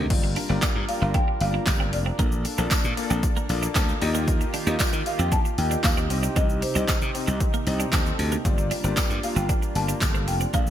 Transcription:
Already playing: swell
0.10 slap bass G1, analog synth pad G3 D4 F4 A#4, grand piano A#3 F4 G4 D5, kick, closed hi-hat, crash
0.24 muted clean electric guitar stroke
0.36 clean electric guitar D4, open hi-hat
0.49 slap bass G1, grand piano A#3 F4 G4 D5, clean electric guitar C4
0.62 clean electric guitar D4, kick, snare, clap, closed hi-hat, tambourine
0.75 slap bass G2, muted clean electric guitar stroke
0.88 grand piano A#3 F4 G4 D5, marimba F5, open hi-hat
1.02 slap bass G1, clean electric guitar C4, marimba F5
1.14 clean electric guitar D4, marimba G5, kick, closed hi-hat
1.28 muted clean electric guitar stroke
1.41 slap bass G1, grand piano A#3 F4 G4 D5, marimba F5, open hi-hat
1.54 clean electric guitar D4
1.66 slap bass G1, grand piano A#3 F4 G4 D5, kick, snare, clap, closed hi-hat, tambourine
1.80 clean electric guitar C4
1.93 slap bass F1, marimba D5, muted clean electric guitar stroke, open hi-hat
2.06 clean electric guitar C4
2.19 slap bass A#1, grand piano A#3 F4 A4 D5, clean electric guitar A#3, analog synth pad A#3 A4, kick, closed hi-hat, shaker
2.32 shaker
2.45 muted clean electric guitar stroke, open hi-hat, shaker
2.58 slap bass A#1, grand piano A#3 F4 A4 D5, clean electric guitar C4, shaker
2.70 clean electric guitar D4, kick, snare, clap, closed hi-hat, tambourine, shaker
2.84 slap bass A#2, shaker
2.97 grand piano A#3 F4 A4 D5, muted clean electric guitar stroke, open hi-hat, shaker
3.10 slap bass A#1, clean electric guitar C4, shaker
3.23 kick, closed hi-hat, shaker
3.36 clean electric guitar A#3, shaker
3.49 slap bass A#1, grand piano A#3 F4 A4 D5 F5, muted clean electric guitar stroke, open hi-hat, shaker
3.63 clean electric guitar D4, shaker
3.75 slap bass D2, grand piano A#3 F4 A4 D5 A5, clean electric guitar C4, kick, snare, clap, closed hi-hat, tambourine, shaker
3.89 shaker
4.01 slap bass D#2, analog synth pad D#3 F4 G4, grand piano A#3 F4 G4 D#5 A#5, muted clean electric guitar stroke, open hi-hat, shaker
4.14 clean electric guitar A#3, shaker
4.28 kick, closed hi-hat, shaker
4.41 muted clean electric guitar stroke, shaker
4.54 clean electric guitar D4, open hi-hat, shaker
4.67 slap bass D#2, grand piano A#3 F4 G4 D#5, clean electric guitar C4, shaker
4.79 clean electric guitar D4, kick, snare, clap, closed hi-hat, tambourine, shaker
4.93 slap bass D#3, muted clean electric guitar stroke, shaker
5.06 grand piano A#3 F4 G4 D#5, marimba F5, open hi-hat, shaker
5.19 slap bass F2, clean electric guitar C4, marimba G5, shaker
5.32 clean electric guitar D4, marimba A5, kick, closed hi-hat, shaker
5.45 muted clean electric guitar stroke, shaker
5.58 slap bass D#2, grand piano A#3 F4 G4 D#5, marimba G5, open hi-hat, shaker
5.71 clean electric guitar D4, shaker
5.83 slap bass D#2, grand piano A#3 F4 G4 D#5, marimba F5, kick, snare, clap, closed hi-hat, tambourine, shaker
5.97 clean electric guitar C4, shaker
6.10 slap bass C2, analog synth pad C3 C4 D#4, grand piano C4 D#4 G4 D#5, muted clean electric guitar stroke, open hi-hat, shaker
6.23 clean electric guitar D4, shaker
6.36 slap bass C2, clean electric guitar C4, marimba D#5, kick, closed hi-hat, shaker
6.49 shaker
6.62 marimba C5, muted clean electric guitar stroke, open hi-hat, shaker
6.75 slap bass C2, grand piano C4 D#4 G4 D#5, clean electric guitar D4, marimba D#5, shaker
6.88 clean electric guitar D#4, kick, snare, clap, closed hi-hat, tambourine, shaker
7.01 slap bass C3, shaker
7.15 grand piano C4 D#4 G4 D#5, muted clean electric guitar stroke, open hi-hat, shaker
7.27 slap bass C2, clean electric guitar C4, shaker
7.40 kick, closed hi-hat, shaker
7.54 clean electric guitar A#3, shaker
7.67 slap bass C2, grand piano C4 D#4 G4 D#5, muted clean electric guitar stroke, open hi-hat, shaker
7.80 clean electric guitar D4, shaker
7.92 slap bass D#2, grand piano C4 D#4 G4 A4, clean electric guitar C4, kick, snare, clap, closed hi-hat, tambourine, shaker
8.06 shaker
8.19 slap bass D2, muted clean electric guitar stroke, open hi-hat, shaker
8.32 clean electric guitar A#3, shaker
8.45 slap bass G1, analog synth pad G3 A#3 D4 F4, grand piano A#3 F4 G4 D5, kick, closed hi-hat, shaker
8.58 muted clean electric guitar stroke, shaker
8.71 clean electric guitar D4, open hi-hat, shaker
8.84 slap bass G1, grand piano A#3 F4 G4 D5, clean electric guitar C4, shaker
8.96 clean electric guitar D4, kick, snare, clap, closed hi-hat, tambourine, shaker
9.10 slap bass G2, muted clean electric guitar stroke, shaker
9.23 grand piano A#3 F4 G4 F5, marimba F5, open hi-hat, shaker
9.36 slap bass G1, clean electric guitar C4, marimba G5, shaker
9.49 clean electric guitar D4, kick, closed hi-hat, shaker
9.62 muted clean electric guitar stroke, shaker
9.75 slap bass G1, grand piano A#3 F4 G4 D5, marimba A5, open hi-hat, shaker
9.89 clean electric guitar D4, shaker
10.01 slap bass G1, grand piano A#3 F4 G4 A4, kick, snare, clap, closed hi-hat, tambourine, shaker
10.15 clean electric guitar C4, shaker
10.28 slap bass F1, marimba G5, muted clean electric guitar stroke, open hi-hat, shaker
10.40 clean electric guitar C4, shaker
10.54 slap bass A#1, analog synth pad A#2 F3 D4, grand piano A#3 F4 A4 D5, clean electric guitar A#3, marimba F5, kick, closed hi-hat, shaker
10.67 shaker

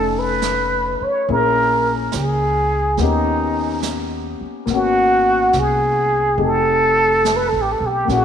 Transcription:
Already playing: upright bass F1, grand piano A3 C#4 D#4 A4, muted trumpet A4
0.19 muted trumpet B4
0.42 snare, hi-hat pedal
0.99 muted trumpet B4, muted upright bass stroke
1.04 muted trumpet C#5
1.27 upright bass A#1, grand piano A#3 C#4 E4 G#4, brush sweep
1.32 muted trumpet A#4
2.12 upright bass C#2, muted trumpet G#4, snare, hi-hat pedal
2.97 upright bass D#2, grand piano A#3 B3, brush sweep, snare
3.02 grand piano C#4 G4, muted trumpet D#4
3.83 snare, hi-hat pedal
4.41 muted upright bass stroke
4.66 upright bass G#1, grand piano A#3, brush sweep, snare
4.70 grand piano B3 C#4, muted trumpet F#4
4.77 grand piano F#4
5.53 upright bass C2, snare, hi-hat pedal
5.59 muted trumpet G#4
6.37 upright bass F1, grand piano A3 C4 D#4 G4, brush sweep
6.44 muted trumpet A4
7.25 snare, hi-hat pedal
7.36 muted trumpet B4
7.48 muted trumpet A4
7.53 upright bass A1
7.62 muted trumpet G4
7.72 muted trumpet A4
7.80 upright bass B1
7.86 muted trumpet G4
8.05 upright bass A#1, grand piano A#3 C#4
8.09 grand piano E4, muted trumpet F#4, brush sweep, snare
8.16 grand piano G#4

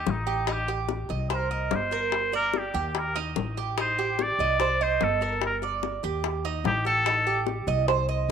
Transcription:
Already playing: cuban tres D#4, muted trumpet G4
0.07 upright bass A1, high bongo, low bongo
0.11 muted trumpet D#4
0.27 cuban tres G4, high bongo
0.47 cuban tres D#4, high bongo
0.53 muted trumpet G4
0.68 cuban tres G4, high bongo
0.89 high bongo
1.09 upright bass C2, cuban tres D#5, high bongo
1.30 cuban tres C5, high bongo
1.35 muted trumpet A#4
1.51 cuban tres D#5
1.71 upright bass G1, high bongo, low bongo
1.75 muted trumpet C5
1.91 cuban tres A#4, high bongo
2.12 high bongo
2.32 muted trumpet A#4, cuban tres D5, high bongo
2.54 high bongo
2.58 muted trumpet G4
2.74 upright bass D#2, cuban tres G4, high bongo
2.95 muted trumpet A#4, high bongo
3.16 cuban tres D#4
3.36 upright bass A1, high bongo, low bongo
3.57 cuban tres G4, high bongo
3.78 cuban tres D#4, muted trumpet C5, high bongo
3.99 cuban tres G4, high bongo
4.19 muted trumpet D5, high bongo
4.39 upright bass C2, cuban tres D#5, high bongo
4.60 cuban tres C5, high bongo
4.81 muted trumpet C5, cuban tres D#5
5.01 upright bass G1, muted trumpet A4, high bongo, low bongo
5.21 cuban tres A#4, high bongo
5.41 high bongo
5.46 muted trumpet A#4
5.62 cuban tres D5, high bongo
5.83 high bongo
6.03 upright bass D#2, cuban tres G4, high bongo
6.24 high bongo
6.45 cuban tres D#4
6.64 upright bass A1, muted trumpet G4, high bongo, low bongo
6.85 cuban tres G4, muted trumpet A4, high bongo
7.06 cuban tres D#4, high bongo
7.27 cuban tres G4, high bongo
7.47 high bongo
7.67 upright bass C2, cuban tres D#5, high bongo
7.88 cuban tres C5, high bongo
8.09 cuban tres D#5

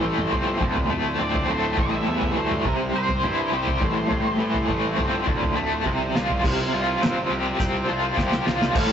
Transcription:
Already playing: overdriven electric guitar A2 E3 C5, transistor combo organ G3 C4 E4 A4, lead electric guitar C5
0.03 picked electric bass A1, overdriven electric guitar A3
0.18 mid tom
0.31 picked electric bass G1, overdriven electric guitar C4, floor tom
0.59 picked electric bass D1, overdriven electric guitar D2, transistor combo organ F3 D4 A4, kick
0.76 floor tom
0.90 picked electric bass D1, overdriven electric guitar A3, mid tom
1.19 picked electric bass D1, overdriven electric guitar C4, lead electric guitar D5
1.34 floor tom
1.46 picked electric bass D1, overdriven electric guitar A3, lead electric guitar C5
1.76 picked electric bass A1, overdriven electric guitar A2, transistor combo organ G3 E4 A4, lead electric guitar E5, kick, floor tom
2.07 picked electric bass E2, overdriven electric guitar E3
2.22 floor tom
2.35 picked electric bass D2, overdriven electric guitar A3, lead electric guitar C5
2.51 mid tom
2.64 picked electric bass C2, overdriven electric guitar C3, lead electric guitar A#4, transistor combo organ A#4, kick, floor tom
2.93 picked electric bass C2, lead electric guitar C5, overdriven electric guitar C5
3.09 floor tom
3.23 picked electric bass G2, overdriven electric guitar E4, mid tom
3.52 picked electric bass C2, overdriven electric guitar G4
3.67 floor tom
3.81 picked electric bass A1, overdriven electric guitar A2, transistor combo organ A4, kick
4.08 picked electric bass A1, overdriven electric guitar A2, floor tom
4.38 picked electric bass A2, overdriven electric guitar E3
4.54 floor tom
4.67 picked electric bass A1, overdriven electric guitar A3, kick
4.96 picked electric bass G1, overdriven electric guitar C4, floor tom
5.25 picked electric bass D1, overdriven electric guitar D2, transistor combo organ F3 D4 A4, kick
5.43 floor tom
5.56 picked electric bass D1, overdriven electric guitar A3
5.82 picked electric bass C2, overdriven electric guitar C3, transistor combo organ F3 G4 A#4, kick
6.15 picked electric bass C2, overdriven electric guitar F4, snare
6.30 floor tom
6.40 overdriven electric guitar C3, transistor combo organ F4 A#4 C5 G5
6.44 picked electric bass C2, kick, crash
6.73 picked electric bass C2, overdriven electric guitar F4
7.02 picked electric bass G1, overdriven electric guitar C4, snare, closed hi-hat
7.30 picked electric bass C2, overdriven electric guitar G4
7.59 picked electric bass C2, overdriven electric guitar C4, kick, closed hi-hat
7.88 picked electric bass C2, overdriven electric guitar F4
8.17 picked electric bass C2, overdriven electric guitar G4, kick, snare
8.32 snare
8.46 picked electric bass C2, overdriven electric guitar F4, snare
8.62 snare
8.73 picked electric bass A1, overdriven electric guitar A2, transistor combo organ G3 E4 A4 C5, lead electric guitar A4, kick, crash

